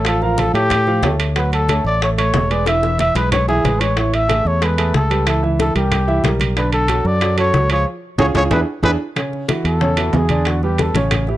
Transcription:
Already playing: fingered electric bass A1
0.05 grand piano F3 F4 F5, trumpet A4, high bongo, high conga, high timbale
0.22 grand piano F3 F4 F5, trumpet A#4, high conga
0.38 trumpet A4, high bongo, high conga, high timbale
0.54 fingered electric bass A2, grand piano A3 A4 C#5, trumpet G4, high bongo, high conga, high timbale
0.70 high bongo, high conga, low conga, high timbale
0.87 grand piano F3 F4 F5, high bongo, high conga
1.02 fingered electric bass D2, grand piano A3 A4 C#5, high bongo, low bongo, high conga, high timbale, low timbale
1.20 high bongo, high timbale
1.36 grand piano F#3 F#4 F#5, trumpet B4, high bongo, high conga, high timbale
1.52 trumpet A4, high bongo, high conga, high timbale
1.69 grand piano A3 A4 C#5, high bongo, high conga, high timbale
1.84 fingered electric bass A1, trumpet D5, high conga
2.02 grand piano A3 A4 C#5, trumpet C#5, high bongo, high conga, high timbale
2.18 grand piano A3 A4 C#5, trumpet C#5, high bongo, high conga, high timbale
2.34 fingered electric bass E1, high bongo, low bongo, high conga, low timbale
2.50 grand piano G#3 G#4 B4, trumpet D5, high bongo, high conga, high timbale
2.66 grand piano E3 E4 E5, trumpet E5, high bongo, high conga, high timbale
2.83 grand piano E3 E4 E5, high bongo, high conga
2.99 trumpet E5, high conga, high timbale
3.15 fingered electric bass B1, grand piano G#3 G#4 B4, trumpet B4, low bongo, high conga, high timbale
3.32 trumpet C#5, low bongo, high conga, low conga, high timbale
3.48 grand piano E3 E4 E5, trumpet G#4, low bongo, high conga
3.64 fingered electric bass A1, grand piano G#3 G#4 B4, low bongo, high conga, high timbale
3.80 trumpet C#5, low bongo, high timbale
3.96 grand piano E3 E4 E5, trumpet C#5, high bongo, high conga, high timbale
4.14 trumpet E5, high bongo, high conga, high timbale
4.28 grand piano A3 G#4 A4, high bongo, high conga, high timbale
4.45 fingered electric bass E2, trumpet C#5, high conga
4.61 grand piano G#3 G#4 A4, trumpet B4, high bongo, high conga, high timbale
4.78 grand piano A3 G#4 A4, high bongo, high conga, high timbale
4.94 fingered electric bass C#2, trumpet A4, high bongo, low bongo, high conga
5.10 grand piano G3 G4 B4, high bongo, high conga, high timbale
5.26 grand piano E3 E4 E5, trumpet A4, high bongo, high conga, high timbale
5.43 grand piano E3 E4 E5, high conga
5.60 trumpet A4, high bongo, high conga, high timbale
5.75 fingered electric bass C2, grand piano G3 G4 A#4, trumpet G4, high bongo, high conga, high timbale
5.92 high bongo, high conga, low conga, high timbale
6.08 grand piano E3 E4 E5, high bongo, high conga
6.24 fingered electric bass B1, grand piano G3 G4 A#4, high bongo, low bongo, high conga, high timbale
6.40 high bongo, high conga, high timbale
6.56 grand piano D3 D4 D5, trumpet B4, high bongo, high conga, high timbale
6.72 trumpet A4, high bongo, high conga, high timbale
6.88 grand piano F#3 F#4 A4, high bongo, high conga, high timbale
7.05 fingered electric bass F#2, trumpet D5, high conga
7.21 grand piano F#3 F#4 A4, high bongo, high conga, high timbale
7.37 grand piano F#3 F#4 A4, trumpet C#5, high bongo, high conga, high timbale
7.53 fingered electric bass C#2, high bongo, low bongo, high conga
7.70 grand piano F3 F4 G#4, trumpet C#5, high bongo, high conga, high timbale
8.18 fingered electric bass C#2, grand piano C#4 F4 G#4, trumpet C#5, high bongo, low conga, high timbale
8.34 fingered electric bass C#2, grand piano C#4 F4 G#4, trumpet C#5, high bongo, low conga, high timbale
8.50 fingered electric bass E2, grand piano D4 E4 G#4, trumpet B4, high bongo, low conga, high timbale
8.82 fingered electric bass E2, grand piano D4 E4 G#4, trumpet B4, high bongo, low conga, high timbale
9.16 grand piano C#3 C#4 C#5, high bongo, high conga, high timbale
9.33 high conga
9.48 grand piano E3 E4 F#4, high bongo, high conga, high timbale, low timbale
9.65 fingered electric bass E2, trumpet A4, high bongo, high timbale
9.81 grand piano C#3 C#4 C#5, high bongo, high conga
9.97 grand piano E3 E4 F#4, high bongo, high timbale
10.13 fingered electric bass E2, trumpet G#4, high bongo, low bongo, high conga, low timbale
10.29 grand piano D3 D4 D5, high bongo, high conga, high timbale
10.45 trumpet F#4, high bongo, high conga, high timbale
10.63 grand piano G3 G4 B4, trumpet G4, high conga
10.78 trumpet A4, high bongo, high conga, high timbale, low timbale
10.94 fingered electric bass A1, grand piano C#3 C#4 C#5, high bongo, high conga, high timbale
11.11 high bongo, high conga, low conga, high timbale
11.27 grand piano E3 E4 G4, high bongo, high conga

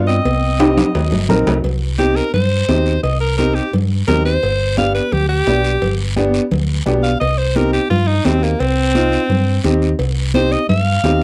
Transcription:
Already playing: fingered electric bass G2, upright piano B3 D4 F4
0.07 clarinet C4, alto saxophone D#5, short guiro
0.25 fingered electric bass C2, cowbell, high conga, long guiro
0.59 upright piano C4 D#4 G4, cowbell, high timbale, short guiro
0.77 low conga, high timbale, short guiro
0.95 fingered electric bass D#2, cowbell, low timbale, long guiro
1.12 fingered electric bass G1, low conga, low timbale
1.29 fingered electric bass A#1, upright piano C4 D#4 A#4, cowbell, low conga, low timbale, short guiro
1.47 fingered electric bass C2, low conga, low timbale, short guiro
1.64 fingered electric bass C2, cowbell, high conga, low conga, long guiro
1.98 upright piano C4 D#4 G4, alto saxophone G4, cowbell, high conga, short guiro
2.16 alto saxophone A#4, short guiro
2.34 fingered electric bass G2, alto saxophone C5, cowbell, high conga, low conga, long guiro
2.68 fingered electric bass D#2, upright piano C4 D#4 G4, cowbell, high conga, low timbale, short guiro
2.86 short guiro
3.03 fingered electric bass C2, alto saxophone D#5, cowbell, high conga, long guiro
3.21 alto saxophone A#4
3.38 upright piano C4 D#4 G4, alto saxophone A#4, cowbell, high conga, short guiro
3.55 alto saxophone G4, short guiro
3.73 fingered electric bass G2, cowbell, high conga, low conga, long guiro
4.07 fingered electric bass D#2, upright piano C4 D#4 G4, alto saxophone A#4, cowbell, high conga, low conga, low timbale, short guiro
4.26 alto saxophone C5, short guiro
4.43 fingered electric bass G1, cowbell, high conga, long guiro
4.77 upright piano B3 D4 G4, alto saxophone F5, cowbell, high conga, short guiro
4.95 alto saxophone B4, short guiro
5.12 fingered electric bass D2, alto saxophone G4, cowbell, high conga, low conga, long guiro
5.29 alto saxophone G4
5.47 fingered electric bass B1, upright piano B3 D4 G4, cowbell, high conga, low timbale, short guiro
5.64 short guiro
5.82 fingered electric bass G1, cowbell, high conga, low conga, long guiro
6.16 upright piano B3 D4 G4, cowbell, high conga, short guiro
6.34 short guiro
6.51 fingered electric bass D2, cowbell, high conga, low conga, long guiro
6.86 fingered electric bass B1, upright piano B3 D4 G4, cowbell, high conga, low timbale, short guiro
7.03 alto saxophone F5, short guiro
7.20 fingered electric bass C2, alto saxophone D#5, cowbell, high conga, long guiro
7.38 alto saxophone C5
7.55 upright piano C4 D#4 G4, alto saxophone A#4, cowbell, high conga, short guiro
7.73 alto saxophone G4, short guiro
7.90 fingered electric bass G2, alto saxophone F4, cowbell, high conga, low conga, long guiro
8.08 alto saxophone D#4
8.25 fingered electric bass D#2, upright piano C4 D#4 G4, alto saxophone C4, cowbell, high conga, low timbale, short guiro
8.43 alto saxophone A#3, short guiro
8.60 fingered electric bass C2, alto saxophone C4, cowbell, high conga, long guiro
8.95 upright piano C4 D#4 F4, cowbell, high conga, short guiro
9.12 short guiro
9.29 fingered electric bass G2, cowbell, high conga, low conga, long guiro
9.64 fingered electric bass D#2, upright piano C4 D#4 G4, cowbell, high conga, short guiro
9.82 short guiro
9.99 fingered electric bass C2, cowbell, high conga, long guiro
10.34 upright piano C4 D#4 G4, alto saxophone C5, cowbell, high conga, short guiro
10.52 alto saxophone D#5, short guiro
10.69 fingered electric bass G2, alto saxophone F5, cowbell, high conga, low conga, long guiro
11.04 fingered electric bass D#2, upright piano C4 D#4 G4, cowbell, high conga, low timbale, short guiro

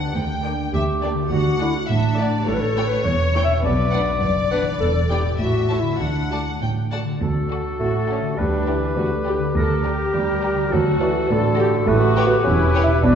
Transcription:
Already playing: harp D3 B4, clarinet D4, violin section F#5
0.02 harp D4
0.06 harp G4
0.11 harp A#4
0.16 double bass section D2, cello section D2, violin section G5
0.44 viola section A#3 D4, violin section D5 G5
0.73 double bass section D2, cello section D2, clarinet G4, violin section E5
1.02 viola section A#3 D4, violin section D5 G5
1.14 harp D3
1.18 harp D4
1.23 harp F#4
1.27 harp A4, violin section F#5
1.31 double bass section D2, cello section D2, clarinet F#4
1.60 viola section A3 D4, clarinet E4, violin section D5 F#5
1.89 double bass section A1, cello section A2, clarinet D4, violin section E5
2.18 viola section A3 D4, violin section D5 F#5
2.29 harp A2
2.34 harp C#4
2.38 harp G4
2.43 harp B4, violin section C#5
2.47 double bass section A1, cello section A2, clarinet A4
2.54 clarinet B4
2.60 clarinet A4
2.76 viola section B3 E4, violin section C#5 G5
2.86 clarinet B4
3.04 double bass section E1, cello section E2, clarinet C#5
3.34 viola section B3 E4, violin section C#5 G5
3.44 harp B2, clarinet E5
3.50 harp D4
3.55 harp F#4
3.59 harp B4, violin section B4
3.63 double bass section B1, cello section B2, clarinet D5
3.92 viola section B3 D4, violin section D5 F#5
4.21 double bass section F#1, cello section F#2, violin section D5
4.51 viola section B3 D4, clarinet B4, violin section D5 F#5
4.62 harp E3
4.66 harp D4
4.71 harp E4
4.75 harp B4
4.80 double bass section E1, cello section E2, clarinet A4
5.09 viola section B3 E4, clarinet G4, violin section D5 G5
5.21 harp A2
5.25 harp C#4
5.30 harp E4
5.34 harp A4
5.38 double bass section A1, cello section A2, clarinet F#4, violin section E5
5.69 viola section A3 E4, violin section C#5 A5
5.80 harp D3, clarinet E4
5.86 harp D4
5.90 harp F#4
5.95 harp A4
6.00 double bass section D2, cello section D3, clarinet D4, violin section F#5
6.30 viola section A3 F#4, violin section D5 A5
6.61 double bass section A1, cello section A2, violin section G5
6.91 viola section A3 F#4, violin section D5 F#5 A5
7.03 harp D3
7.08 harp D4
7.13 harp F#4
7.17 harp A4
7.21 double bass section D2, cello section D2, clarinet F#4, oboe A4
7.50 violin section F#4 A4 D5
7.80 double bass section A1, cello section A2, bassoon A3, viola section F#4
8.09 viola section C#4, violin section F#4 A4 D5
8.20 harp D3
8.25 harp D4
8.29 harp G4
8.34 harp B4
8.38 double bass section D2, cello section D2, bassoon G3, viola section D4, clarinet G4, oboe B4
8.68 bassoon E3, violin section G4 B4 D5
8.97 cello section D2, double bass section D2, bassoon D3, viola section F#4
9.27 violin section G4 B4 D5, viola section G4
9.38 harp D3
9.42 harp D4
9.47 harp G4
9.51 harp A#4
9.56 double bass section D2, cello section D2, viola section A4, oboe A#4
9.85 violin section G4 A#4 D5, viola section G4
10.14 double bass section D2, cello section D2, bassoon G3
10.43 violin section G4 A#4 D5
10.54 harp D3
10.59 harp D4
10.63 harp F#4
10.68 harp A4
10.72 double bass section D2, cello section D2, bassoon F#3, viola section F#4, clarinet F#4, oboe A4
11.01 bassoon E3, violin section F#4 A4 D5
11.30 double bass section A1, cello section A2, bassoon D3, viola section A4
11.58 violin section F#4 A4 D5, viola section G4
11.70 harp A2
11.74 harp C#4
11.79 harp G4
11.83 viola section F#4, harp B4
11.87 double bass section A1, cello section A2, bassoon A3, clarinet G4, oboe B4
12.16 violin section G4 B4 C#5
12.27 bassoon B3
12.44 double bass section E1, cello section E2, bassoon C#4, viola section E4
12.74 violin section G4 B4 C#5
12.84 harp B2, bassoon E4
12.90 harp D4
12.95 harp F#4
12.99 bassoon D4, viola section D4, harp B4
13.03 double bass section B1, cello section B2, clarinet F#4

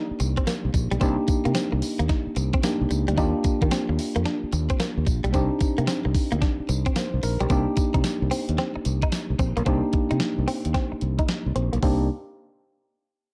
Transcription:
Already playing: tine electric piano A#3 D4 D#4 G4
0.11 muted fingered electric bass stroke
0.20 fingered electric bass C2, muted clean electric guitar stroke, closed hi-hat, tambourine
0.37 clean electric guitar C4, kick, closed hi-hat
0.47 clean electric guitar A#3, snare, closed hi-hat, tambourine
0.65 fingered electric bass C2
0.74 fingered electric bass A#1, muted clean electric guitar stroke, kick, closed hi-hat, tambourine
0.91 fingered electric bass B1, clean electric guitar G3, closed hi-hat
1.00 fingered electric bass C2, tine electric piano A#3 D4 D#4 G4, clean electric guitar C4, kick, closed hi-hat, tambourine
1.28 muted clean electric guitar stroke, muted fingered electric bass stroke, kick, closed hi-hat, tambourine
1.45 fingered electric bass C3, clean electric guitar A#3, closed hi-hat
1.55 clean electric guitar C4, snare, closed hi-hat, tambourine
1.72 fingered electric bass C2, muted clean electric guitar stroke
1.82 open hi-hat, tambourine
1.99 fingered electric bass D#2, clean electric guitar A#3, closed hi-hat
2.09 clean electric guitar D#4, kick, snare, closed hi-hat
2.27 muted fingered electric bass stroke
2.36 fingered electric bass C2, muted clean electric guitar stroke, closed hi-hat, tambourine
2.53 clean electric guitar C4, kick, closed hi-hat
2.63 tine electric piano A#3 D4 D#4 G4, clean electric guitar A#3, snare, closed hi-hat, tambourine
2.81 fingered electric bass C2
2.91 fingered electric bass C#2, muted clean electric guitar stroke, closed hi-hat, tambourine
3.08 fingered electric bass D2, clean electric guitar G3, closed hi-hat
3.17 fingered electric bass D#2, tine electric piano A#3 D4 F4 G4, clean electric guitar D#4, kick, closed hi-hat, tambourine
3.44 muted clean electric guitar stroke, muted fingered electric bass stroke, kick, closed hi-hat, tambourine
3.62 fingered electric bass D#3, clean electric guitar A#3, kick, closed hi-hat
3.71 clean electric guitar C4, snare, closed hi-hat, tambourine
3.89 fingered electric bass D#2, muted clean electric guitar stroke
3.99 open hi-hat, tambourine
4.16 fingered electric bass F2, clean electric guitar A#3, closed hi-hat
4.25 clean electric guitar D4, snare, closed hi-hat
4.44 muted fingered electric bass stroke
4.52 fingered electric bass D#2, muted clean electric guitar stroke, closed hi-hat, tambourine
4.70 clean electric guitar C4, kick, closed hi-hat
4.80 clean electric guitar A#3, snare, closed hi-hat, tambourine
4.97 fingered electric bass D#2
5.07 fingered electric bass A#1, muted clean electric guitar stroke, kick, closed hi-hat, tambourine
5.24 fingered electric bass B1, clean electric guitar G3, closed hi-hat
5.33 fingered electric bass C2, tine electric piano C4 D4 D#4 G4, clean electric guitar C4, kick, closed hi-hat, tambourine
5.61 muted clean electric guitar stroke, muted fingered electric bass stroke, kick, closed hi-hat, tambourine
5.78 fingered electric bass C3, clean electric guitar A#3, closed hi-hat
5.87 clean electric guitar C4, snare, closed hi-hat, tambourine
6.05 fingered electric bass C2, muted clean electric guitar stroke
6.15 kick, open hi-hat, tambourine
6.32 fingered electric bass D2, clean electric guitar A#3, closed hi-hat
6.42 clean electric guitar D4, kick, snare, closed hi-hat
6.60 muted fingered electric bass stroke
6.69 fingered electric bass C2, muted clean electric guitar stroke, closed hi-hat, tambourine
6.86 clean electric guitar C4, kick, closed hi-hat
6.96 clean electric guitar A#3, tine electric piano C5, snare, closed hi-hat, tambourine
7.14 fingered electric bass C2
7.23 fingered electric bass A#1, tine electric piano A#4, muted clean electric guitar stroke, open hi-hat, tambourine
7.40 fingered electric bass B1, clean electric guitar G3, tine electric piano G4, closed hi-hat
7.50 fingered electric bass C2, tine electric piano A#3 D4 D#4 G4, clean electric guitar C4, kick, closed hi-hat, tambourine
7.77 muted clean electric guitar stroke, muted fingered electric bass stroke, kick, closed hi-hat, tambourine
7.94 fingered electric bass C3, clean electric guitar D#4, kick, closed hi-hat
8.04 snare, closed hi-hat, tambourine
8.22 fingered electric bass C2
8.31 clean electric guitar C4, open hi-hat, tambourine
8.49 fingered electric bass D#2, closed hi-hat
8.58 clean electric guitar C4, snare, closed hi-hat
8.76 muted clean electric guitar stroke, muted fingered electric bass stroke
8.85 fingered electric bass C2, closed hi-hat, tambourine
9.02 clean electric guitar D#4, kick, closed hi-hat
9.12 muted clean electric guitar stroke, snare, closed hi-hat, tambourine
9.30 fingered electric bass C2
9.39 fingered electric bass A#1, clean electric guitar C4, kick, closed hi-hat, tambourine
9.57 fingered electric bass B1, clean electric guitar A#3, closed hi-hat
9.66 fingered electric bass C2, tine electric piano A#3 D4 D#4 G4, clean electric guitar C4, kick, closed hi-hat
9.93 muted clean electric guitar stroke, muted fingered electric bass stroke, kick, closed hi-hat
10.11 fingered electric bass C3, clean electric guitar D#4, closed hi-hat
10.20 snare, closed hi-hat
10.38 fingered electric bass C2
10.48 clean electric guitar C4, open hi-hat
10.65 fingered electric bass D#2, closed hi-hat
10.74 clean electric guitar C4, kick, snare, closed hi-hat
10.92 muted clean electric guitar stroke, muted fingered electric bass stroke
11.01 fingered electric bass C2, closed hi-hat
11.19 clean electric guitar D#4, kick, closed hi-hat
11.28 muted clean electric guitar stroke, snare, closed hi-hat
11.46 fingered electric bass C2
11.56 fingered electric bass A#1, clean electric guitar C4, closed hi-hat
11.73 fingered electric bass B1, clean electric guitar A#3, closed hi-hat
11.83 fingered electric bass C2, tine electric piano A#3 D4 D#4 G4, clean electric guitar C4, kick, open hi-hat

